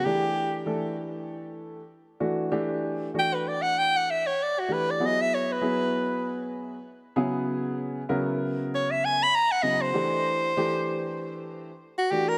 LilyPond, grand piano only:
\new Staff \with { instrumentName = "Grand piano" } { \time 4/4 \key e \major \tempo 4 = 97 <e a d' g'>4 <e a d' a'>2 r8 <e a d' fis'>8 | <e a d' g'>4 <e a d' fis'>2 r8 <e a d' g'>8 | <fis b e' gis'>4 <fis b e' gis'>2 r8 <cis fis b e' gis'>8~ | <cis fis b e' gis'>4 <cis fis b e' ais'>2 r8 <cis fis b e' gis'>8 |
<e a d' g'>4 <e a d' g'>2 r8 <e a d' fis'>8 | }